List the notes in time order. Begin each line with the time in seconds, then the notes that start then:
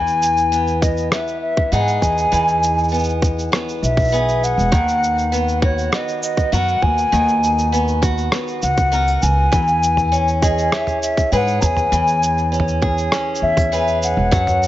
Already playing: E2 E3 G#5
0.07 shaker
0.22 shaker
0.37 shaker
0.52 B3, shaker
0.67 shaker
0.82 D#5, kick, shaker
0.97 shaker
1.12 B3 E5, cross-stick, shaker
1.27 shaker
1.41 E5
1.57 kick
1.72 G#2 B3 D#4 G#4 F#5, shaker
1.88 shaker
2.01 E2 G#5, kick, shaker
2.18 shaker
2.32 E2 E3, shaker
2.48 shaker
2.63 shaker
2.78 shaker
2.83 shaker
2.89 B3, shaker
2.94 shaker
2.99 shaker
3.04 shaker
3.09 shaker
3.22 kick, shaker
3.39 shaker
3.52 B3, cross-stick, shaker
3.69 shaker
3.82 B1 E5, shaker
3.97 kick, shaker
4.01 shaker
4.04 shaker
4.07 shaker
4.09 shaker
4.11 B3 G#4, shaker
4.14 shaker
4.29 shaker
4.44 F#5, shaker
4.58 E1, shaker
4.72 D#2 D#3, kick, shaker
4.88 shaker
5.04 shaker
5.18 shaker
5.32 B3, shaker
5.48 shaker
5.62 F#4 C#5, kick
5.78 shaker
5.92 B3 D#5, cross-stick, shaker
6.08 shaker
6.23 D#5, shaker
6.37 kick, shaker
6.52 F#2 B3 F#4 A#4 F#5, shaker
6.68 shaker
6.82 D#2 G#5, kick
6.98 shaker
7.12 D#2 D#3, shaker
7.28 shaker
7.43 shaker
7.59 shaker
7.72 B3, shaker
7.88 shaker
8.02 F#4, kick, shaker
8.18 shaker
8.32 B3, cross-stick, shaker
8.48 shaker
8.62 C#2 F#5, shaker
8.78 kick, shaker
8.92 B3 F#4 A#4, shaker
9.07 shaker
9.22 C#2 G#5, shaker
9.52 E2 E3, kick, shaker
9.67 shaker
9.83 shaker
9.97 mid tom, shaker
10.12 C#4, shaker
10.28 shaker
10.42 G#4 D#5, kick, shaker
10.58 shaker
10.72 C#4 E5, cross-stick, shaker
10.87 mid tom, shaker
11.02 E5, shaker
11.17 kick, shaker
11.32 G#2 C#4 G#4 B4 G#5, shaker
11.37 F#5
11.47 shaker
11.60 E2 A#5, kick, shaker
11.65 G#5
11.77 mid tom, shaker
11.92 E2 E3, shaker
12.07 shaker
12.23 shaker
12.38 shaker
12.52 C#4, shaker
12.60 mid tom
12.68 shaker
12.82 G#4, kick
12.98 shaker
13.12 C#4, cross-stick, shaker
13.35 shaker
13.42 E2 E5
13.57 kick, mid tom, shaker
13.72 C#4 G#4 B4, shaker
13.88 shaker
14.03 F#5, shaker
14.17 E1
14.31 F#2 F#3, kick, shaker
14.47 mid tom, shaker
14.63 shaker